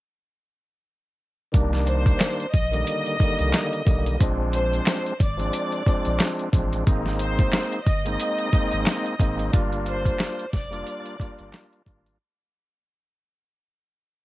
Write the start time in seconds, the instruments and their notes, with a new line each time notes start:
1.52 sub bass C2, tonewheel organ D#3 G3 A#3 D4, kick, closed hi-hat
1.73 snare
1.87 violin section C5, closed hi-hat
2.06 kick, closed hi-hat
2.20 snare, clap, closed hi-hat
2.40 closed hi-hat
2.53 sub bass A#1, violin section D#5, kick, closed hi-hat
2.71 tonewheel organ D3 D#3 G3 A#3, closed hi-hat
2.87 closed hi-hat
3.06 closed hi-hat
3.19 tonewheel organ D3 D#3 G3 A#3, kick, closed hi-hat
3.39 sub bass C2, closed hi-hat
3.53 snare, clap, closed hi-hat
3.73 closed hi-hat
3.85 sub bass B1, tonewheel organ D3 D#3 G3 A#3, kick, closed hi-hat
4.06 closed hi-hat
4.19 sub bass A#1, tonewheel organ F3 G#3 C4 D4, kick, closed hi-hat
4.53 violin section C5, closed hi-hat
4.73 closed hi-hat
4.86 snare, clap, closed hi-hat
5.06 closed hi-hat
5.20 sub bass G#1, violin section D5, kick, closed hi-hat
5.37 tonewheel organ F3 G#3 C4 D4, closed hi-hat
5.53 closed hi-hat
5.72 closed hi-hat
5.86 tonewheel organ F3 G#3 C4 D4, kick, closed hi-hat
6.05 sub bass A#1, closed hi-hat
6.19 snare, clap, closed hi-hat
6.39 closed hi-hat
6.52 sub bass A1, tonewheel organ F3 G#3 C4 D4, kick, closed hi-hat
6.73 closed hi-hat
6.85 sub bass G#1, tonewheel organ G#3 A#3 C4 D#4, kick, closed hi-hat
7.06 snare
7.19 violin section C5, closed hi-hat
7.39 kick, closed hi-hat
7.53 snare, clap, closed hi-hat
7.72 closed hi-hat
7.85 sub bass G1, violin section D#5, kick, closed hi-hat
8.05 tonewheel organ G#3 A#3 C4 D#4, closed hi-hat
8.20 closed hi-hat
8.38 closed hi-hat
8.52 tonewheel organ G#3 A#3 C4 D#4, kick, closed hi-hat
8.71 sub bass G#1, closed hi-hat
8.86 snare, clap, closed hi-hat
9.06 closed hi-hat
9.19 sub bass G#1, tonewheel organ G#3 A#3 C4 D#4, kick, closed hi-hat
9.39 closed hi-hat
9.51 sub bass G1, tonewheel organ G3 A#3 D4 F4, kick, closed hi-hat
9.73 closed hi-hat
9.86 violin section C5, closed hi-hat
10.06 kick, closed hi-hat
10.19 snare, clap, closed hi-hat
10.39 closed hi-hat
10.53 sub bass F1, violin section D5, kick, snare, closed hi-hat
10.71 tonewheel organ G3 A#3 D4 F4, closed hi-hat
10.87 closed hi-hat
11.06 closed hi-hat
11.19 tonewheel organ G3 A#3 D4 F4, kick, closed hi-hat
11.39 sub bass G1, closed hi-hat
11.53 snare, clap, closed hi-hat
11.73 closed hi-hat
11.85 sub bass G#1, tonewheel organ G3 A#3 D4 F4, kick, closed hi-hat
12.06 closed hi-hat